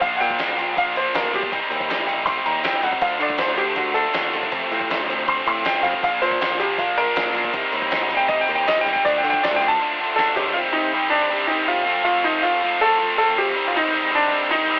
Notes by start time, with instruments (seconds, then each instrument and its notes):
0.01 picked electric bass A#1, distorted electric guitar A#2 F3 A#3 D4, upright piano F5, kick, open hi-hat
0.16 upright piano F#5
0.20 distorted electric guitar A#2 F3 A#3 D4, picked electric bass A#2, upright piano G5, open hi-hat
0.30 kick
0.39 distorted electric guitar A#2 F3 A#3 D4, snare, open hi-hat
0.49 picked electric bass A#1
0.59 distorted electric guitar A#2 F3 A#3 D4, open hi-hat
0.76 distorted electric guitar A#2 F3 A#3 D4, upright piano F5, kick, open hi-hat
0.96 distorted electric guitar A#2 F3 A#3 D4, upright piano C5, open hi-hat
1.15 picked electric bass B1, distorted electric guitar A#2 F3 A#3 D4, upright piano A#4, snare, open hi-hat
1.33 distorted electric guitar A#2 F3 A#3 D4, upright piano G4, snare, open hi-hat
1.43 kick
1.52 picked electric bass C2, distorted electric guitar C3 G3 C4 D#4, kick, open hi-hat
1.71 picked electric bass D#2, distorted electric guitar C3 G3 C4 D#4, open hi-hat
1.80 kick
1.89 distorted electric guitar C3 G3 C4 D#4, snare, open hi-hat
1.98 picked electric bass A1
2.07 distorted electric guitar C3 G3 C4 D#4, open hi-hat
2.26 distorted electric guitar C3 G3 C4 D#4, upright piano C6, kick, open hi-hat
2.46 picked electric bass D#2, distorted electric guitar C3 G3 C4 D#4, upright piano A#5, open hi-hat
2.64 distorted electric guitar C3 G3 C4 D#4, upright piano G5, snare, open hi-hat
2.82 picked electric bass C#2, distorted electric guitar C3 G3 C4 D#4, upright piano F#5, open hi-hat
2.93 kick
3.02 picked electric bass D2, distorted electric guitar D3 F3 A3 D4, upright piano F5, kick, open hi-hat
3.20 distorted electric guitar D3 F3 A3 D4, picked electric bass D3, upright piano D5, open hi-hat
3.30 kick
3.38 distorted electric guitar D3 F3 A3 D4, upright piano C5, snare, open hi-hat
3.48 picked electric bass D2
3.58 distorted electric guitar D3 F3 A3 D4, upright piano G4, open hi-hat
3.76 distorted electric guitar D3 F3 A3 D4, upright piano F#4, kick, open hi-hat
3.94 distorted electric guitar D3 F3 A3 D4, upright piano A4, open hi-hat
4.13 picked electric bass D#2, distorted electric guitar D3 F3 A3 D4, snare, open hi-hat
4.33 distorted electric guitar D3 F3 A3 D4, open hi-hat
4.43 kick
4.51 distorted electric guitar F2 C3 F3 A3 C4, picked electric bass F2, kick, open hi-hat
4.72 distorted electric guitar F2 C3 F3 A3 C4, picked electric bass A2, open hi-hat
4.80 kick
4.89 distorted electric guitar F2 C3 F3 A3 C4, snare, open hi-hat
5.00 picked electric bass D2
5.08 distorted electric guitar F2 C3 F3 A3 C4, open hi-hat
5.26 distorted electric guitar F2 C3 F3 A3 C4, upright piano C6, kick, open hi-hat
5.47 distorted electric guitar F2 C3 F3 A3 C4, picked electric bass A2, upright piano C6, open hi-hat
5.65 distorted electric guitar F2 C3 F3 A3 C4, upright piano G5, snare, open hi-hat
5.83 distorted electric guitar F2 C3 F3 A3 C4, picked electric bass F2, upright piano F5, snare, open hi-hat
5.93 kick
6.03 picked electric bass A#1, distorted electric guitar A#2 F3 A#3 D4, upright piano F5, kick, open hi-hat
6.22 picked electric bass A#2, distorted electric guitar A#2 F3 A#3 D4, upright piano C5, open hi-hat
6.31 kick
6.41 distorted electric guitar A#2 F3 A#3 D4, upright piano C5, snare, open hi-hat
6.50 picked electric bass A#1
6.59 distorted electric guitar A#2 F3 A#3 D4, upright piano G4, open hi-hat
6.78 distorted electric guitar A#2 F3 A#3 D4, upright piano F4, kick, open hi-hat
6.98 distorted electric guitar A#2 F3 A#3 D4, upright piano A#4, open hi-hat
7.15 distorted electric guitar A#2 F3 A#3 D4, picked electric bass A#2, snare, open hi-hat
7.35 distorted electric guitar A#2 F3 A#3 D4, open hi-hat
7.44 kick
7.53 picked electric bass C2, distorted electric guitar C3 G3 C4 D#4, kick, open hi-hat
7.72 picked electric bass D#2, distorted electric guitar C3 G3 C4 D#4, open hi-hat
7.82 kick
7.91 distorted electric guitar C3 G3 C4 D#4, snare, open hi-hat
8.00 picked electric bass A1
8.11 distorted electric guitar C3 G3 C4 D#4, open hi-hat
8.17 upright piano G5
8.28 distorted electric guitar C3 G3 C4 D#4, upright piano D#5, kick, open hi-hat
8.41 upright piano G5
8.48 picked electric bass D#2, distorted electric guitar C3 G3 C4 D#4, open hi-hat
8.55 upright piano G5
8.68 distorted electric guitar C3 G3 C4 D#4, upright piano D#5, snare, open hi-hat
8.81 upright piano G5
8.86 picked electric bass C2, distorted electric guitar C3 G3 C4 D#4, snare, open hi-hat
8.93 upright piano G5, kick
9.05 picked electric bass D2, distorted electric guitar D3 F3 A3 D4, upright piano D5, kick, open hi-hat
9.18 upright piano G5
9.24 picked electric bass D3, distorted electric guitar D3 F3 A3 D4, open hi-hat
9.30 upright piano G5, kick
9.42 distorted electric guitar D3 F3 A3 D4, upright piano D5, snare, open hi-hat
9.51 picked electric bass D2
9.56 upright piano G5
9.61 distorted electric guitar D3 F3 A3 D4, open hi-hat
9.68 upright piano A5
9.81 distorted electric guitar D3 F3 A3 D4
10.00 distorted electric guitar D3 F3 A3 D4
10.16 distorted electric guitar D3 F3 A3 D4, upright piano A4, snare
10.36 distorted electric guitar D3 F3 A3 D4, upright piano G4, floor tom
10.54 distorted electric guitar C3 D#3 G3, upright piano F4
10.58 distorted electric guitar C4 G4
10.73 distorted electric guitar C4 G4, upright piano D#4
10.77 distorted electric guitar G3
10.91 distorted electric guitar D#3 G3 C4 G4
11.10 distorted electric guitar C3 D#3 G3 C4 G4, upright piano D4
11.30 distorted electric guitar D#3 G3 C4 G4
11.47 distorted electric guitar C3 D#3 G3 C4 G4, upright piano D#4
11.66 distorted electric guitar D#3 G3 C4 G4, upright piano F4
11.85 distorted electric guitar F3 A3 C4 F4
12.04 distorted electric guitar F3 A3 C4 F4, upright piano F4
12.24 distorted electric guitar A3 C4 F4, upright piano D#4
12.43 distorted electric guitar F3 A3 C4 F4, upright piano F4
12.62 distorted electric guitar F3 A3 C4 F4
12.81 distorted electric guitar F3 A3 C4 F4, upright piano A4
12.99 distorted electric guitar F3 A3 C4 F4
13.18 distorted electric guitar F3 A3 C4 F4, upright piano A4
13.36 distorted electric guitar A3 C4 F4, upright piano G4
13.55 distorted electric guitar D#3 G3 C4 D#4
13.68 upright piano F4
13.75 distorted electric guitar G3 C4 D#4, upright piano D#4
13.92 distorted electric guitar D#3 G3 C4 D#4
14.11 distorted electric guitar D#3 G3 C4 D#4, upright piano D4
14.31 distorted electric guitar D#3 G3 C4 D#4
14.51 distorted electric guitar D#3 G3 C4 D#4, upright piano D#4
14.69 distorted electric guitar D#3 G3 C4 D#4